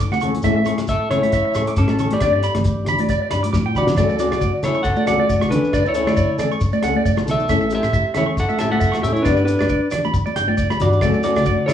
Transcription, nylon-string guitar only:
0.23 A3 C#4 A4
0.43 E3 A3 C#4 A4
0.65 A3 C#4 A4
1.09 A3 C#4 A4
1.54 C#4 A4
1.59 A3
1.99 A3 C#4 A4
2.22 D4 G4, muted nylon-string guitar stroke
2.42 D4 G4
2.85 G4
2.89 D4
3.30 D4 G4
3.74 D4 G4
3.97 F#3 A3 C#4 A4
4.16 A3 C#4 A4
4.62 A3 C#4 A4
5.05 C#4 A4
5.09 A3
5.49 A3 C#4 A4
5.93 A3 C#4 A4
6.38 A3 C#4 A4
6.82 A3 C#4 A4
7.26 A3 A4
7.49 E3 A3 C#4 A4
7.71 A3 C#4 A4
8.15 A3 C#4 A4
8.57 C#4 A4
8.61 A3
9.02 A3 C#4 A4
9.25 B3 D4 G4
9.45 D4 G4
9.91 G4
9.95 D4
10.36 D4, muted nylon-string guitar stroke
10.80 D4 G4
11.01 F#3 A3 C#4 A4
11.24 A3 C#4 A4
11.66 A3 C#4 A4

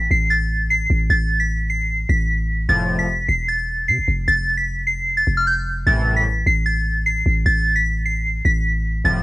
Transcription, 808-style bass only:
0.11 A1
0.90 A1
1.10 A1
2.09 A1
2.69 F1
3.28 E1
3.88 C3
3.98 E1
4.08 F1
4.28 F1
5.27 F1
5.87 A1
6.46 A1
7.26 A1
7.46 A1
8.45 A1
9.05 F1

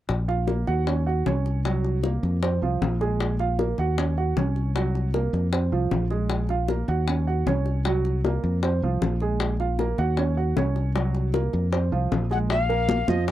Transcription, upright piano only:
0.28 F4 F5
0.47 A#3 A#4
0.67 F#4 F#5
0.87 C#4 C#5
1.06 F#4 F#5
1.26 C#4 C#5
1.65 F#3 F#4
2.03 A#3 A#4
2.42 C4 C5
2.62 F3 F4
3.01 G#3 G#4
3.40 F4 F5
3.59 A#3 A#4
3.79 F#4 F#5
3.98 C#4 C#5
4.18 F#4 F#5
4.37 C#4 C#5
4.75 F#3 F#4
5.14 A#3 A#4
5.52 C4 C5
5.72 F3 F4
6.11 G#3 G#4
6.50 F4 F5
6.69 A#3 A#4
6.89 F#4 F#5
7.09 C#4 C#5
7.27 F#4 F#5
7.47 C#4 C#5
7.85 F#3 F#4
8.25 A#3 A#4
8.64 C4 C5
8.83 F3 F4
9.21 G#3 G#4
9.60 F4 F5
9.80 A#3 A#4
9.99 F#4 F#5
10.18 C#4 C#5
10.37 F#4 F#5
10.57 C#4 C#5
10.95 F#3 F#4
11.34 A#3 A#4
11.72 C4 C5
11.92 F3 F4
12.31 G#3 G#4
12.69 A#3 A#4
13.08 F3 F4

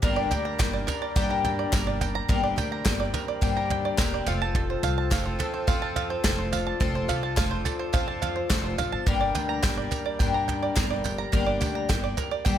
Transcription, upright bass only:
0.03 G1
0.31 D2
0.59 G1
1.16 G2
1.73 G1
2.29 G1
2.57 D2
2.86 G1
3.42 G2
3.98 E1
4.26 F1
4.83 C2
5.12 F1
5.68 F2
6.24 F1
6.81 F1
7.08 C2
7.37 F1
7.94 F2
8.50 F1
8.79 A1
8.93 G1
9.07 G1
9.35 D2
9.64 G1
10.20 G2
10.77 G1
11.33 G1
11.61 D2
11.90 G1
12.46 G2

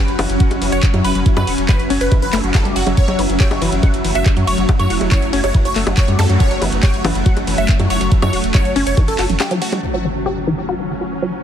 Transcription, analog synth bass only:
0.08 F#1
0.19 F#1
0.29 F#1
0.51 F#1
0.62 F#1
0.72 F#1
0.94 F#2
1.04 F#1
1.15 F#1
1.37 F#2
1.47 E1
1.58 E1
1.79 F#1
1.90 F#1
2.01 F#1
2.22 F#1
2.33 F#1
2.44 F#1
2.65 F#1
2.76 F#1
2.87 F#1
3.08 F#1
3.19 F#1
3.30 F#1
3.51 F#1
3.62 F#1
3.72 F#1
3.94 F#1
4.04 F#1
4.15 F#1
4.37 F#2
4.47 F#1
4.58 F#1
4.80 F#2
4.90 E1
5.01 E1
5.22 F#1
5.33 F#1
5.44 F#1
5.65 F#1
5.76 F#1
5.87 F#1
6.08 F#2
6.19 F#2
6.29 F#2
6.51 F#1
6.62 F#1
6.72 F#1
6.94 F#1
7.04 F#1
7.15 F#1
7.37 F#1
7.47 F#1
7.58 F#1
7.79 F#2
7.90 F#1
8.01 F#1
8.22 F#2
8.33 E1
8.44 E1
8.65 F#1
8.76 F#1
8.87 F#1
9.08 F#1
9.19 F#1
9.29 F#1

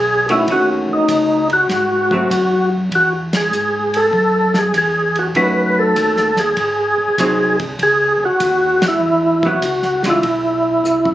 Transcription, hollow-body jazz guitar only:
0.30 D#3 A3 C#4 F#4
0.49 D#3 A3 C#4 F#4
2.12 F#3 A3 C4
5.36 D#3 A3 C#4 F#4
7.19 F#3 C4 D#4
9.45 F#3 B3 E4
10.06 E3 G#3 D4 F4

